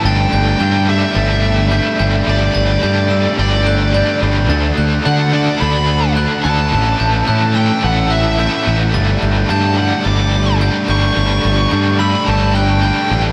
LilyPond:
<<
  \new Staff \with { instrumentName = "Glockenspiel" } { \time 4/4 \key d \major \tempo 4 = 108 a'''8 g'''8 g'''4 a'''4 g'''8 g'''8~ | g'''8 a'''8 g'''8 e'''4 fis'''8 g'''4 | a'''8 fis'''8 fis'''4 a'''4 fis'''8 fis'''8~ | fis'''8 g'''8 fis'''8 e'''4 fis'''8 g'''4 |
a'''8 g'''8 g'''4 a'''4 g'''8 g'''8~ | g'''8 a'''8 g'''8 e'''4 fis'''8 g'''4 | }
  \new Staff \with { instrumentName = "Lead electric guitar" } { \time 4/4 \key d \major g''4. e''2~ e''8 | d''2 d''4. r8 | r4 fis''8 d''8 b''4 r8 a''8~ | a''4. g''8 fis''8 e''8 e''8. r16 |
r4 a''8 fis''8 d'''4 r8 cis'''8~ | cis'''4. b''8 a''8 g''8 g''8. r16 | }
  \new Staff \with { instrumentName = "Overdriven electric guitar" } { \time 4/4 \key d \major <g a d' g'>4 <g a d' g'>8 <g a d' g'>8 <g a d' g'>4 <g a d' g'>8 <g a d' g'>8 | <g a d' g'>4 <g a d' g'>8 <g a d' g'>8 <g a d' g'>4 <g a d' g'>8 <g a d' g'>8 | <d a d' fis'>4 <d a d' fis'>8 <d a d' fis'>8 <d a d' fis'>4 <d a d' fis'>8 <d a d' fis'>8 | <a, e a cis' e'>4 <a, e a cis' e'>8 <a, e a cis' e'>8 <a, e a cis' e'>4 <a, e a cis' e'>8 <a, e a cis' e'>8 |
<g a d' g'>4 <g a d' g'>8 <g a d' g'>8 <g a d' g'>4 <g a d' g'>8 <g a d' g'>8 | <g a d' g'>4 <g a d' g'>8 <g a d' g'>8 <g a d' g'>4 <g a d' g'>8 <g a d' g'>8 | }
  \new Staff \with { instrumentName = "Overdriven electric guitar" } { \clef bass \time 4/4 \key d \major <g, d g>4 <g, d g>8 <g, d g>8 <g, d g>4 <g, d g>8 <g, d g>8 | <g, d g>4 <g, d g>8 <g, d g>8 <g, d g>4 <g, d g>8 <g, d g>8 | <d a d'>4 <d a d'>8 <d a d'>8 <d a d'>4 <d a d'>8 <d a d'>8 | <a, e a>4 <a, e a>8 <a, e a>8 <a, e a>4 <a, e a>8 <a, e a>8 |
<g, d g>4 <g, d g>8 <g, d g>8 <g, d g>4 <g, d g>8 <g, d g>8 | <g, d g>4 <g, d g>8 <g, d g>8 <g, d g>4 <g, d g>8 <g, d g>8 | }
  \new Staff \with { instrumentName = "Fingered electric bass" } { \clef bass \time 4/4 \key d \major g,,8 g,,8 g,4 g,,4. g,,8 | g,,8 g,,8 g,4 g,,4. g,,8 | d,8 d,8 d4 d,4. d,8 | a,,8 a,,8 a,4 a,,4. a,,8 |
g,,8 g,,8 g,4 g,,4. g,,8 | g,,8 g,,8 g,4 g,,4. a,,8 | }
>>